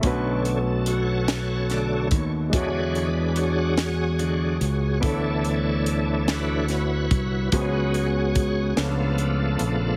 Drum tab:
HH |xxxxxx|xxxxxx|xxxxxx|xxxxxx|
SD |---oo-|---o--|---oo-|---o--|
BD |o----o|o-----|o----o|o-o---|